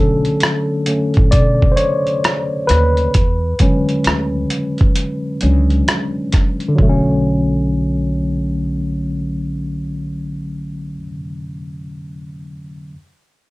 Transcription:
0.00 0.26 B1 medium
0.00 0.84 D3 medium
0.00 3.16 F#3 medium
0.00 0.84 A3 medium
0.00 0.84 C#4 medium
0.00 3.17 D4 medium
0.00 1.38 A4 loud
0.25 closed hi-hat soft
0.40 cross-stick loud
0.40 closed hi-hat medium
0.86 1.29 D3 soft
0.86 1.29 A3 soft
0.86 1.29 C#4 soft
0.86 closed hi-hat medium
1.14 1.31 A1 medium
1.14 kick loud
1.14 closed hi-hat soft
1.31 1.70 B1 medium
1.31 1.73 D5 medium
1.31 kick medium
1.31 closed hi-hat medium
1.62 kick medium
1.72 1.78 C5 medium
1.76 2.71 C#5 medium
1.76 closed hi-hat medium
2.07 closed hi-hat soft
2.24 cross-stick loud
2.24 closed hi-hat medium
2.67 3.07 D#2 medium
2.67 5.37 B4 medium
2.67 cross-stick soft
2.67 closed hi-hat medium
2.97 closed hi-hat soft
3.14 3.52 E2 medium
3.14 kick loud
3.14 closed hi-hat medium
3.59 3.83 E2 medium
3.59 4.25 D3 medium
3.59 4.25 F#3 soft
3.59 4.25 G#3 medium
3.59 4.25 C#4 medium
3.59 kick medium
3.59 closed hi-hat medium
3.89 closed hi-hat soft
4.04 4.43 D2 medium
4.04 cross-stick medium
4.04 closed hi-hat medium
4.50 closed hi-hat medium
4.78 kick medium
4.78 closed hi-hat soft
4.96 closed hi-hat medium
5.41 5.80 C#2 medium
5.41 5.84 F#3 soft
5.41 5.84 G#3 soft
5.41 5.84 C#4 soft
5.41 5.84 D4 soft
5.41 closed hi-hat medium
5.70 closed hi-hat soft
5.88 cross-stick loud
5.88 closed hi-hat medium
6.33 kick medium
6.33 cross-stick soft
6.33 closed hi-hat medium
6.60 closed hi-hat soft
6.68 10.94 D3 medium
6.75 11.04 B1 medium
6.75 11.01 F#3 medium
6.75 kick medium
6.82 11.08 A3 medium
6.89 11.14 C#4 medium

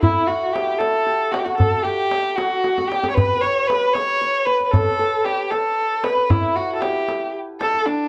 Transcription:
0.00 0.28 E4 medium
0.00 0.20 E4 medium
0.00 0.28 F#4 medium
0.00 0.79 A4 medium
0.00 0.32 B4 medium
0.00 tombak dum medium
0.21 3.69 E4 soft
0.27 0.54 F#4 medium
0.27 1.12 F#4 medium
0.53 0.80 G4 medium
0.53 tombak tek medium
0.79 1.33 A4 medium
0.79 1.57 A4 medium
0.79 tombak tek medium
1.06 1.37 G4 medium
1.31 1.45 F#4 medium
1.31 1.40 F#4 medium
1.31 tombak tek medium
1.39 1.46 G4 medium
1.44 1.57 F#4 medium
1.44 1.90 F#4 medium
1.44 tombak ka soft
1.58 4.50 A4 medium
1.58 1.85 A4 medium
1.58 tombak dum medium
1.83 2.37 G4 medium
1.83 2.43 G4 medium
2.11 tombak tek medium
2.36 2.89 F#4 medium
2.36 2.64 F#4 medium
2.36 tombak tek medium
2.64 2.97 F#4 medium
2.64 tombak tek medium
2.78 tombak ka medium
2.88 3.09 G4 medium
2.88 6.05 G4 medium
2.88 tombak tek medium
3.04 tombak ka medium
3.10 3.16 C#5 medium
3.15 3.43 B4 medium
3.15 3.36 B4 medium
3.15 tombak dum medium
3.37 4.46 B4 medium
3.41 3.69 C#5 medium
3.41 3.95 C#5 medium
3.68 3.95 B4 loud
3.68 tombak tek medium
3.93 4.47 C#5 loud
3.93 4.21 C#5 medium
3.93 tombak tek medium
4.21 6.77 C#5 medium
4.46 4.65 B4 loud
4.46 6.04 B4 medium
4.60 tombak ka soft
4.66 4.73 B4 medium
4.71 5.26 A4 medium
4.71 4.99 A4 medium
4.71 tombak dum medium
4.99 5.51 A4 medium
5.25 5.52 G4 medium
5.25 tombak tek medium
5.50 6.05 A4 medium
5.50 7.61 A4 medium
5.50 tombak tek medium
6.03 6.32 B4 medium
6.03 8.08 B4 medium
6.03 tombak tek medium
6.17 tombak ka soft
6.30 8.08 E4 medium
6.30 6.57 E4 medium
6.30 tombak dum medium
6.56 6.74 F#4 medium
6.56 6.88 F#4 medium
6.75 6.83 A4 medium
6.81 7.34 G4 medium
6.81 8.08 G4 medium
6.81 tombak tek medium
7.09 tombak tek medium
7.61 7.88 A4 loud
7.61 8.08 A4 medium
7.61 tombak tek medium
7.74 tombak ka soft
7.87 8.08 D4 medium

